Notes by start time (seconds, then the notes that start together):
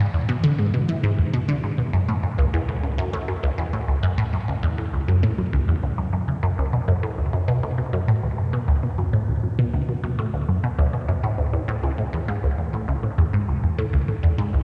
0.14 E2
0.29 B2
0.44 D3
0.59 G#2
0.74 B2
0.89 E3
1.03 G#2
1.19 E2
1.33 B2
1.48 D3
1.63 G#2
1.78 B2
1.93 F#2
2.08 A2
2.23 F#2
2.38 C#2
2.54 E2
2.68 A2
2.83 C#2
2.98 F#2
3.13 A2
3.28 F#2
3.43 C#2
3.58 E2
3.73 A2
3.88 C#2
4.03 F#2
4.18 A2
4.33 F#2
4.48 C#2
4.63 E2
4.78 A2
4.93 C#2
5.08 F#2
5.23 A2
5.38 F#2
5.53 C#2
5.68 E2
5.83 C#2
5.98 F#2
6.13 F#2
6.28 C#3
6.43 F#2
6.58 C#2
6.73 B2
6.88 F#2
7.03 A2
7.18 D2
7.33 F#2
7.48 B2
7.63 D2
7.78 B2
7.93 F#2
8.08 A2
8.23 D2
8.38 F#2
8.53 B2
8.68 D2
8.83 B2
8.98 F#2
9.13 A2
9.28 D2
9.43 F#2
9.59 B2
9.73 D2
9.89 B2
10.04 F#2
10.19 A2
10.34 D2
10.49 F#2
10.64 B2
10.78 D2
10.93 B2
11.08 F#2
11.23 A2
11.38 D2
11.53 E2
11.68 A2
11.83 C#2
11.98 A2
12.13 E2
12.28 G#2
12.43 C#2
12.58 E2
12.73 A2
12.88 C#2
13.03 A2
13.18 E2
13.33 G#2
13.49 C#2
13.63 E2
13.78 A2
13.93 C#2
14.08 A2
14.23 E2
14.38 G#2
14.53 C#2